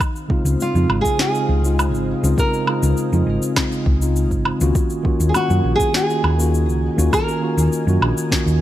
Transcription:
0.00 4.71 C4 medium
0.00 4.72 D#5 medium
0.00 4.72 F5 medium
0.00 8.61 G#5 medium
0.00 kick loud
0.00 cabasa soft
0.00 low woodblock medium
0.16 cabasa soft
0.28 0.70 C#3 medium
0.28 0.71 G#3 medium
0.28 0.71 C4 medium
0.28 0.72 D#4 medium
0.28 0.72 F4 medium
0.28 kick loud
0.45 0.54 C#2 medium
0.45 cabasa medium
0.60 1.01 F4 medium
0.60 cabasa soft
0.73 0.84 F2 medium
0.73 1.15 C#3 medium
0.73 1.15 G#3 medium
0.73 1.15 C4 medium
0.73 1.16 D#4 medium
0.73 1.16 F4 medium
0.73 cabasa soft
0.90 0.99 G#1 medium
0.90 low woodblock medium
1.01 1.19 G#4 medium
1.01 kick medium
1.01 cabasa medium
1.17 1.59 C#3 medium
1.17 1.60 G#3 medium
1.17 1.60 C4 medium
1.17 1.61 D#4 medium
1.17 1.61 F4 medium
1.17 2.35 G#4 medium
1.17 snare medium
1.17 cabasa soft
1.35 cabasa soft
1.49 1.94 C#2 medium
1.62 2.19 C#3 medium
1.62 2.19 G#3 medium
1.62 2.20 C4 medium
1.62 2.20 D#4 medium
1.62 2.21 F4 medium
1.62 cabasa medium
1.79 cabasa soft
1.79 low woodblock medium
1.94 2.13 G#1 medium
1.94 cabasa soft
2.22 2.33 C#2 medium
2.22 2.63 C#3 medium
2.22 2.64 G#3 medium
2.22 2.64 C4 medium
2.22 2.65 D#4 medium
2.22 2.65 F4 loud
2.22 cabasa medium
2.38 3.53 A#4 medium
2.38 kick loud
2.38 cabasa medium
2.54 cabasa soft
2.66 3.08 C#3 medium
2.66 3.08 G#3 medium
2.66 3.09 C4 medium
2.66 3.09 D#4 medium
2.66 3.10 F4 medium
2.66 low woodblock medium
2.83 2.92 C#2 medium
2.83 cabasa medium
2.97 cabasa medium
3.11 3.22 F2 medium
3.11 3.52 C#3 medium
3.11 3.53 G#3 medium
3.11 3.53 C4 medium
3.11 3.54 D#4 medium
3.11 3.54 F4 medium
3.11 cabasa soft
3.27 3.37 G#1 medium
3.42 cabasa medium
3.55 3.97 C#3 medium
3.55 3.97 G#3 medium
3.55 3.98 C4 medium
3.55 3.98 D#4 medium
3.55 3.99 F4 medium
3.55 kick loud
3.55 snare medium
3.55 cabasa medium
3.55 low woodblock medium
3.72 cabasa soft
3.86 4.31 C#2 medium
3.86 kick loud
4.00 4.56 C#3 medium
4.00 4.57 G#3 medium
4.00 4.57 C4 medium
4.00 4.57 D#4 medium
4.00 4.58 F4 medium
4.00 cabasa medium
4.16 cabasa medium
4.31 4.50 G#1 medium
4.31 kick medium
4.31 cabasa soft
4.45 low woodblock medium
4.59 4.70 C#2 medium
4.59 5.00 D#3 medium
4.59 5.01 A#3 medium
4.59 5.02 C#4 medium
4.59 5.02 F4 medium
4.59 5.02 F#4 medium
4.59 cabasa medium
4.75 8.61 A#4 medium
4.75 8.61 D#5 medium
4.75 kick loud
4.75 cabasa medium
4.90 cabasa soft
5.03 5.45 D#3 medium
5.03 5.46 A#3 medium
5.03 5.46 C#4 medium
5.03 5.46 F4 medium
5.03 5.47 F#4 medium
5.03 kick loud
5.20 5.30 D#2 medium
5.20 cabasa medium
5.29 5.35 G#4 medium
5.34 5.75 F#4 medium
5.34 cabasa medium
5.34 low woodblock medium
5.48 5.59 F#2 medium
5.48 5.90 D#3 medium
5.48 5.90 A#3 medium
5.48 5.90 C#4 medium
5.48 5.91 F4 medium
5.48 5.91 F#4 medium
5.48 cabasa soft
5.64 5.74 A#1 medium
5.76 5.95 G#4 medium
5.80 kick medium
5.80 cabasa medium
5.92 6.34 D#3 medium
5.92 6.35 A#3 medium
5.92 6.35 C#4 medium
5.92 6.36 F4 medium
5.92 6.36 F#4 medium
5.92 7.10 G#4 medium
5.92 snare medium
5.92 cabasa medium
6.10 cabasa soft
6.24 6.68 D#2 medium
6.24 low woodblock medium
6.37 6.94 D#3 medium
6.37 6.94 A#3 medium
6.37 6.95 C#4 medium
6.37 6.95 F4 medium
6.37 6.96 F#4 medium
6.37 cabasa medium
6.54 cabasa medium
6.68 6.88 C#2 medium
6.68 cabasa soft
6.96 7.08 D#2 loud
6.96 7.38 D#3 medium
6.96 7.38 A#3 medium
6.96 7.39 C#4 medium
6.96 7.39 F4 medium
6.96 7.40 F#4 loud
6.96 cabasa medium
7.13 8.28 A#4 loud
7.13 kick loud
7.13 cabasa medium
7.13 low woodblock medium
7.29 cabasa soft
7.40 7.83 D#3 medium
7.40 7.83 A#3 medium
7.40 7.84 C#4 medium
7.40 7.84 F4 medium
7.40 7.85 F#4 medium
7.58 7.67 D#2 medium
7.58 cabasa medium
7.73 cabasa medium
7.85 7.97 F#2 medium
7.85 8.27 D#3 medium
7.85 8.28 A#3 medium
7.85 8.28 C#4 medium
7.85 8.28 F4 medium
7.85 8.29 F#4 medium
7.85 cabasa soft
8.01 8.12 A#1 medium
8.01 low woodblock medium
8.18 cabasa medium
8.29 8.57 D#3 medium
8.29 8.58 A#3 medium
8.29 8.58 C#4 medium
8.29 8.59 F4 medium
8.29 8.59 F#4 medium
8.29 kick loud
8.29 snare medium
8.29 cabasa medium
8.46 8.61 D#2 medium
8.46 cabasa soft

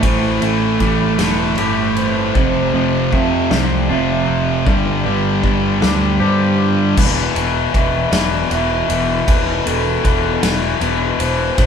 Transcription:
0.00 0.39 A1 loud
0.00 0.40 A2 medium
0.00 1.96 A2 medium
0.00 0.41 E3 medium
0.00 0.42 G3 medium
0.00 0.42 A3 medium
0.00 1.18 C4 medium
0.00 1.18 G4 medium
0.00 0.42 C5 medium
0.00 kick loud
0.00 ride medium
0.41 0.78 A1 medium
0.41 0.78 A2 medium
0.41 2.34 E3 medium
0.41 0.79 E3 medium
0.41 0.80 A3 medium
0.41 1.19 A4 medium
0.41 ride medium
0.80 1.17 A1 medium
0.80 1.16 A2 medium
0.80 1.17 E3 medium
0.80 2.35 G3 medium
0.80 1.18 A3 medium
0.80 kick medium
0.80 ride medium
1.18 1.55 E1 medium
1.18 1.55 A2 medium
1.18 1.56 E3 loud
1.18 1.57 A3 loud
1.18 1.96 C4 medium
1.18 snare loud
1.18 ride medium
1.57 2.31 G1 medium
1.57 2.32 A2 medium
1.57 2.32 E3 medium
1.57 2.33 A3 medium
1.57 2.35 G4 medium
1.57 1.96 B4 medium
1.57 ride medium
1.96 2.35 C4 medium
1.96 2.34 C5 medium
1.96 ride medium
2.34 2.72 F1 loud
2.34 2.72 F2 loud
2.34 4.28 F2 medium
2.34 2.73 C3 medium
2.34 2.73 F3 medium
2.34 3.12 C5 loud
2.34 kick loud
2.72 3.09 F1 medium
2.72 3.11 F2 medium
2.72 3.11 C3 medium
2.72 4.66 F3 medium
2.72 3.12 F3 loud
3.12 3.50 F2 medium
3.12 3.49 F2 medium
3.12 3.50 C3 medium
3.12 3.51 F3 medium
3.12 4.66 A3 medium
3.12 3.51 E5 medium
3.12 kick medium
3.50 3.87 C2 loud
3.50 3.88 F2 loud
3.50 3.89 C3 loud
3.50 3.90 F3 loud
3.50 4.27 C4 medium
3.50 3.89 D5 medium
3.50 snare loud
3.89 4.25 F1 medium
3.89 4.64 F2 medium
3.89 4.65 C3 medium
3.89 4.65 F3 medium
3.89 4.66 F4 medium
3.89 4.66 E5 medium
4.28 4.64 F1 medium
4.28 4.66 C4 medium
4.65 5.03 G1 loud
4.65 6.58 G2 medium
4.65 5.04 G2 medium
4.65 5.04 D3 loud
4.65 5.05 G3 loud
4.65 5.05 D5 loud
4.65 kick loud
5.03 5.41 G1 medium
5.03 5.42 G2 medium
5.03 5.42 D3 medium
5.03 6.97 G3 medium
5.03 5.43 G3 loud
5.03 5.81 B4 medium
5.43 5.80 G1 medium
5.43 5.79 G2 medium
5.43 5.81 D3 medium
5.43 5.81 G3 medium
5.43 kick medium
5.81 6.18 D2 medium
5.81 6.18 G2 medium
5.81 6.19 D3 loud
5.81 6.20 G3 loud
5.81 6.58 D4 medium
5.81 snare loud
6.19 6.95 G2 medium
6.19 6.93 G2 medium
6.19 6.95 D3 loud
6.19 6.95 G3 loud
6.19 6.97 G4 medium
6.19 6.58 C5 medium
6.58 6.97 D4 medium
6.58 6.97 D5 medium
6.97 7.28 E1 loud
6.97 7.35 E2 medium
6.97 7.34 B2 loud
6.97 7.36 E3 loud
6.97 7.74 B4 loud
6.97 kick loud
6.97 crash loud
7.35 7.67 E1 medium
7.35 7.73 E2 medium
7.35 7.73 B2 medium
7.35 7.74 E3 loud
7.35 ride medium
7.73 8.06 E1 medium
7.73 8.10 E2 medium
7.73 8.10 B2 loud
7.73 8.12 E3 medium
7.73 8.12 E5 medium
7.73 kick medium
7.73 ride medium
8.11 8.43 E1 loud
8.11 8.49 E2 medium
8.11 8.50 B2 medium
8.11 8.51 E3 medium
8.11 8.50 D5 loud
8.11 snare loud
8.11 ride loud
8.50 8.82 E1 medium
8.50 8.87 E2 medium
8.50 8.88 B2 loud
8.50 8.89 E3 loud
8.50 9.28 E5 medium
8.50 ride medium
8.88 9.21 E1 medium
8.88 9.25 E2 medium
8.88 9.26 B2 loud
8.88 9.28 E3 loud
8.88 ride medium
9.27 9.59 E1 loud
9.27 9.64 E2 loud
9.27 9.65 B2 loud
9.27 9.66 E3 loud
9.27 9.66 B4 loud
9.27 kick loud
9.27 ride loud
9.65 9.97 E1 medium
9.65 10.02 E2 medium
9.65 10.03 B2 medium
9.65 10.04 E3 loud
9.65 10.43 A4 medium
9.65 ride medium
10.03 10.36 E1 medium
10.03 10.41 E2 medium
10.03 10.41 B2 medium
10.03 10.42 E3 loud
10.03 kick medium
10.03 ride medium
10.42 10.74 E1 medium
10.42 10.79 E2 medium
10.42 10.80 B2 loud
10.42 10.80 E3 medium
10.42 snare loud
10.42 ride loud
10.80 11.12 E1 medium
10.80 11.18 E2 loud
10.80 11.18 B2 medium
10.80 11.19 E3 loud
10.80 11.20 B4 medium
10.80 ride medium
11.18 11.50 E1 loud
11.18 11.55 E2 medium
11.18 11.56 B2 loud
11.18 11.56 E3 loud
11.18 11.57 C5 medium
11.18 ride medium
11.58 11.66 A1 loud
11.58 11.66 A2 medium
11.58 11.66 E3 loud
11.58 11.66 A3 loud
11.58 11.66 C5 loud
11.58 kick loud
11.58 ride loud

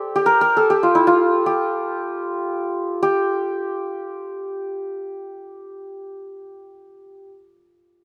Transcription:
0.00 0.15 G4 medium
0.00 0.32 A4 medium
0.00 0.74 C5 medium
0.00 0.50 D5 medium
0.16 0.70 G4 medium
0.26 0.41 A#4 medium
0.41 0.63 A#4 medium
0.57 3.51 A4 medium
0.70 1.46 G4 medium
0.83 1.01 F4 medium
0.95 1.13 E4 medium
1.07 4.44 F4 medium
1.46 3.02 G4 medium
3.03 7.27 G4 medium

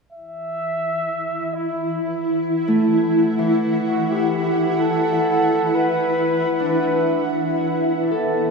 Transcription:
0.13 8.51 E3 medium
0.13 8.51 E4 medium
0.13 1.56 E5 loud
0.72 8.51 E5 medium
1.54 2.48 E4 medium
1.66 8.51 F#5 medium
2.22 8.51 B5 medium
2.68 6.01 A3 soft
3.39 7.29 E3 soft
3.86 4.13 F#4 medium
4.11 4.80 G4 medium
4.79 5.76 A4 medium
5.13 7.19 F#5 soft
5.75 6.68 B4 medium
6.60 8.51 D4 soft
6.68 7.35 B4 medium
7.62 8.51 B3 medium
8.11 8.51 A4 soft

